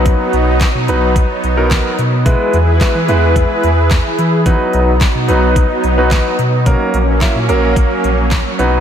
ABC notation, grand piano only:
X:1
M:4/4
L:1/16
Q:1/4=109
K:B
V:1 name="Grand piano"
[F,B,DB]4 z2 [F,B,DB]3 z2 [F,B,DA]3 z2 | [G,B,EB]2 z2 [G,B,EB] z [G,B,EB]4 z6 | [F,B,DB]3 z3 [F,B,DB]3 z2 [F,B,DB]3 z2 | [F,A,CA]2 z2 [F,A,CE] z [F,A,CA]4 z4 [F,B,DB]2 |]